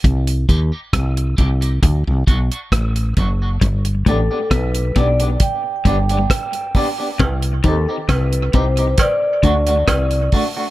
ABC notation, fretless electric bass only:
X:1
M:4/4
L:1/16
Q:1/4=67
K:G
V:1 name="Fretless electric bass" clef=bass
C,,2 _E,, z C,,2 C,,2 D,, C,, B,,, z A,,,2 F,,,2 | G,,,2 A,,, z B,,,2 B,,,2 z2 G,,,2 z4 | C,,2 _E,, z C,,2 C,,2 z2 D,,2 C,,2 z2 |]